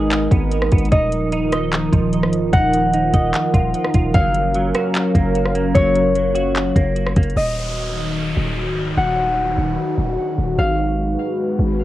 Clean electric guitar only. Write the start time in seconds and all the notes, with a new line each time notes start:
Already playing: G#3 B3 G#4
0.32 B3
0.72 B3
0.92 D#4
1.32 D#4
1.53 D#5
1.93 F3
2.53 D#4
2.94 D#4
3.14 D#5
3.54 F4
3.94 F4
4.14 F#3
4.55 F#3
4.75 F#4
5.15 A#3
5.55 A#3
5.75 F#3
6.16 F#3
6.35 F#4
6.76 A#3
7.16 A#3